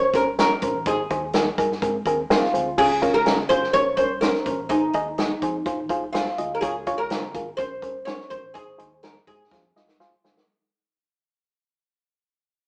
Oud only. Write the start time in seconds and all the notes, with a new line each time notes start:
Already playing: C#5
0.15 A#4
0.40 A#4
0.88 G#4
2.31 F4
2.79 G#4
3.14 A#4
3.49 C5
3.73 C#5
3.97 C5
4.21 A#4
4.69 D#4
6.13 F4
6.55 A#4
6.61 G#4
6.98 A#4
7.57 C5
8.05 C#5
8.30 C5
8.54 G#4
9.03 A#4
9.27 G#4